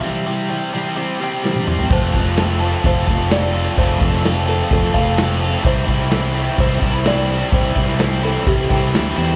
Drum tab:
CC |----------------|x-x-x-x-x-x-x-x-|x-x-x-x-x-x-x-x-|x-x-x-x-x-x-x-x-|
SD |------------o---|----o-------o---|---oo-------o---|---oo-------o---|
T1 |-------------o--|----------------|----------------|----------------|
T2 |--------------o-|----------------|----------------|----------------|
FT |---------------o|----------------|----------------|----------------|
BD |----------------|o-o-----o-o-----|o-o-----o-o-----|o-o-----o-o-----|

CC |x-x-x-x-x-x-x-x-|
SD |---oo-------o---|
T1 |----------------|
T2 |----------------|
FT |----------------|
BD |o-o-----o-o-----|